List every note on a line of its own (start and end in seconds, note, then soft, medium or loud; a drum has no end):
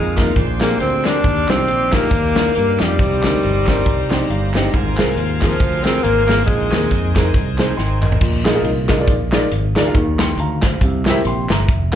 0.00 0.30 F2 medium
0.00 0.14 A#2 medium
0.00 0.34 G#3 medium
0.00 0.33 D#4 medium
0.00 1.20 G#4 medium
0.00 0.36 A#4 medium
0.00 0.34 F5 medium
0.00 0.36 A#5 medium
0.00 0.34 D#6 medium
0.17 0.29 A#3 medium
0.17 0.29 D#4 medium
0.17 0.30 F4 medium
0.17 0.30 A#4 medium
0.17 kick medium
0.17 snare medium
0.17 clap medium
0.17 closed hi-hat medium
0.35 0.74 A#1 medium
0.35 1.01 A#2 medium
0.35 1.23 D4 medium
0.35 1.23 C5 medium
0.35 2.95 G5 medium
0.35 1.23 G5 medium
0.35 1.22 C6 medium
0.35 4.68 D6 medium
0.35 kick loud
0.35 closed hi-hat medium
0.60 0.78 A#3 medium
0.60 0.73 C4 medium
0.60 0.73 D4 medium
0.60 0.73 G4 medium
0.60 0.74 G#4 medium
0.60 snare loud
0.60 clap medium
0.60 closed hi-hat medium
0.80 1.18 D2 medium
0.80 1.08 C4 medium
0.80 closed hi-hat medium
1.05 1.17 C4 medium
1.05 1.17 D4 medium
1.05 1.52 D4 loud
1.05 1.17 G4 medium
1.05 1.17 A#4 medium
1.05 snare loud
1.05 clap medium
1.05 closed hi-hat medium
1.23 1.45 D#2 loud
1.23 1.89 D#3 medium
1.23 4.69 D#4 medium
1.23 2.97 G4 medium
1.23 4.70 D5 medium
1.23 2.96 F5 medium
1.23 2.97 F5 medium
1.23 kick loud
1.23 closed hi-hat medium
1.48 1.69 C2 medium
1.48 1.95 C4 loud
1.48 1.61 D4 medium
1.48 1.61 D#4 medium
1.48 1.61 F4 medium
1.48 1.61 G4 medium
1.48 snare loud
1.48 clap loud
1.48 closed hi-hat medium
1.68 2.05 A#1 medium
1.68 closed hi-hat medium
1.92 2.55 A#3 medium
1.92 2.04 D4 medium
1.92 2.04 D#4 medium
1.92 2.05 F4 medium
1.92 2.05 G4 medium
1.92 kick medium
1.92 snare medium
1.92 clap loud
1.92 closed hi-hat medium
2.11 2.48 D#2 medium
2.11 kick loud
2.11 closed hi-hat medium
2.35 2.47 D4 medium
2.35 2.48 D#4 medium
2.35 2.48 F4 medium
2.35 2.48 A#4 medium
2.35 snare loud
2.35 clap medium
2.35 closed hi-hat medium
2.55 2.77 G2 medium
2.55 2.82 A#3 medium
2.55 closed hi-hat medium
2.80 2.97 F2 medium
2.80 4.55 G3 medium
2.80 2.92 D4 medium
2.80 2.92 D#4 medium
2.80 2.92 F4 medium
2.80 2.92 G4 medium
2.80 snare loud
2.80 clap medium
2.80 closed hi-hat medium
2.99 3.20 C2 loud
2.99 3.64 C3 medium
2.99 4.71 D#4 medium
2.99 8.18 C5 medium
2.99 8.18 A#5 medium
2.99 4.72 A#5 medium
2.99 4.71 C6 medium
2.99 kick loud
2.99 closed hi-hat medium
3.23 3.40 D2 medium
3.23 3.35 C4 medium
3.23 3.36 D4 medium
3.23 3.36 D#4 medium
3.23 3.36 A#4 medium
3.23 snare medium
3.23 clap loud
3.23 closed hi-hat medium
3.43 3.81 G1 medium
3.43 closed hi-hat medium
3.66 3.79 C4 medium
3.66 3.79 D4 medium
3.66 3.79 D#4 medium
3.66 3.80 A#4 medium
3.66 3.85 C6 medium
3.66 kick medium
3.66 snare loud
3.66 clap loud
3.66 closed hi-hat medium
3.86 4.23 C2 medium
3.86 4.13 A#5 medium
3.86 kick loud
3.86 closed hi-hat medium
4.10 4.22 C4 medium
4.10 4.22 D4 medium
4.10 4.23 D#4 medium
4.10 4.23 G4 loud
4.10 snare loud
4.10 clap medium
4.10 closed hi-hat medium
4.16 4.29 G5 medium
4.30 4.67 G1 medium
4.30 4.53 F5 medium
4.30 closed hi-hat medium
4.54 4.66 C4 medium
4.54 4.67 D4 medium
4.54 4.67 D#4 medium
4.54 4.67 G4 medium
4.54 4.72 D#5 medium
4.54 snare loud
4.54 clap medium
4.54 closed hi-hat medium
4.73 4.95 G#1 loud
4.73 5.38 G#2 medium
4.73 6.46 F4 medium
4.73 8.18 A#4 medium
4.73 6.46 F5 medium
4.73 8.19 G#5 medium
4.73 8.19 C6 medium
4.73 kick loud
4.73 closed hi-hat medium
4.97 5.14 C2 medium
4.97 5.10 C4 medium
4.97 5.10 F4 medium
4.97 5.10 G#4 medium
4.97 5.11 A#4 medium
4.97 snare loud
4.97 clap medium
4.97 closed hi-hat medium
5.16 5.53 D#2 medium
5.16 closed hi-hat medium
5.41 5.86 F3 medium
5.41 5.53 C4 medium
5.41 5.54 F4 medium
5.41 5.54 G#4 medium
5.41 5.54 A#4 medium
5.41 kick medium
5.41 snare medium
5.41 clap medium
5.41 closed hi-hat medium
5.60 5.97 D2 medium
5.60 kick loud
5.60 closed hi-hat medium
5.84 6.05 C4 loud
5.84 5.97 C4 medium
5.84 5.97 F4 medium
5.84 5.97 G#4 medium
5.84 5.98 A#4 medium
5.84 snare loud
5.84 clap medium
5.84 closed hi-hat medium
6.03 6.41 G#1 medium
6.03 6.25 A#3 medium
6.03 closed hi-hat medium
6.26 6.45 A#3 loud
6.26 6.40 C4 medium
6.26 6.40 F4 medium
6.26 6.41 G#4 medium
6.26 snare loud
6.26 clap medium
6.30 6.41 A#4 medium
6.30 closed hi-hat medium
6.45 6.68 A#1 medium
6.45 7.12 A#2 medium
6.45 7.11 G#3 medium
6.45 8.20 D#4 medium
6.45 8.20 D#5 medium
6.45 kick loud
6.45 closed hi-hat medium
6.72 6.88 D#2 medium
6.72 6.84 C4 medium
6.72 6.84 D#4 medium
6.72 6.85 G#4 medium
6.72 6.85 A#4 medium
6.72 snare loud
6.72 clap loud
6.72 closed hi-hat medium
6.91 7.28 F2 medium
6.91 kick medium
6.91 closed hi-hat medium
7.15 7.27 C4 medium
7.15 7.27 D#4 medium
7.15 7.28 G#4 medium
7.15 7.28 A#4 medium
7.15 kick medium
7.15 snare medium
7.15 clap loud
7.15 closed hi-hat medium
7.34 7.71 C2 medium
7.34 kick loud
7.34 closed hi-hat medium
7.58 7.70 C4 medium
7.58 7.71 D#4 medium
7.58 7.71 G#4 medium
7.58 7.71 C5 medium
7.58 snare loud
7.58 clap medium
7.58 closed hi-hat medium
7.77 8.15 G#1 medium
7.77 8.01 G5 medium
7.77 8.01 C6 medium
7.77 snare medium
8.02 8.44 A#4 medium
8.02 8.44 D#5 medium
8.02 clap medium
8.02 mid tom medium
8.12 floor tom medium
8.21 8.58 A#1 loud
8.21 8.86 A#2 medium
8.21 kick loud
8.21 crash medium
8.44 8.51 D#4 medium
8.44 8.52 F4 medium
8.44 8.52 G#4 medium
8.44 8.52 A#4 medium
8.44 8.52 D#5 loud
8.44 snare loud
8.44 clap loud
8.44 closed hi-hat medium
8.55 8.67 D#4 medium
8.55 8.68 F4 medium
8.55 8.68 G#4 medium
8.55 8.68 A#4 medium
8.55 8.68 D#5 loud
8.64 9.07 C2 loud
8.64 closed hi-hat medium
8.88 8.95 D#4 medium
8.88 8.95 F4 medium
8.88 8.95 G#4 medium
8.88 8.95 A#4 medium
8.88 8.96 D#5 medium
8.88 kick medium
8.88 snare medium
8.88 clap loud
8.88 closed hi-hat medium
8.98 9.11 D#4 medium
8.98 9.11 F4 medium
8.98 9.11 G#4 medium
8.98 9.12 A#4 medium
8.98 9.12 D5 medium
9.07 9.45 A#1 medium
9.07 kick loud
9.07 closed hi-hat loud
9.32 9.44 D#4 medium
9.32 9.45 F4 medium
9.32 9.45 G#4 medium
9.32 9.45 A#4 medium
9.32 9.45 D5 loud
9.32 snare loud
9.32 clap medium
9.32 closed hi-hat medium
9.51 9.73 G#1 loud
9.51 closed hi-hat loud
9.75 9.92 D2 medium
9.75 9.82 D#4 medium
9.75 9.82 F4 medium
9.75 9.82 G#4 medium
9.75 9.82 A#4 medium
9.75 9.83 D5 loud
9.75 snare loud
9.75 clap medium
9.75 closed hi-hat medium
9.85 9.95 D#4 medium
9.85 9.95 F4 medium
9.85 9.95 G#4 medium
9.85 9.96 A#4 medium
9.85 9.96 F5 medium
9.94 10.32 D#2 loud
9.94 10.59 D#3 medium
9.94 kick loud
9.94 closed hi-hat medium
10.18 10.38 G5 medium
10.18 10.38 C6 medium
10.18 snare loud
10.18 clap loud
10.18 closed hi-hat medium
10.37 10.75 D2 loud
10.37 10.63 F5 medium
10.37 10.63 A#5 medium
10.37 closed hi-hat medium
10.62 11.06 C5 medium
10.62 11.05 F5 medium
10.62 kick medium
10.62 snare loud
10.62 clap loud
10.62 closed hi-hat medium
10.81 11.18 C2 loud
10.81 11.47 C3 medium
10.81 kick loud
10.81 closed hi-hat loud
11.05 11.19 E4 loud
11.05 11.19 G4 medium
11.05 11.19 A#4 medium
11.05 11.20 C5 medium
11.05 snare loud
11.05 clap medium
11.05 closed hi-hat medium
11.10 11.20 E5 loud
11.25 11.46 A#1 loud
11.25 11.50 G5 medium
11.25 11.50 C6 medium
11.25 closed hi-hat loud
11.49 11.68 G1 medium
11.49 11.92 E5 medium
11.49 11.92 A#5 medium
11.49 snare loud
11.49 clap medium
11.49 closed hi-hat medium
11.68 11.95 F1 loud
11.68 kick loud
11.68 closed hi-hat medium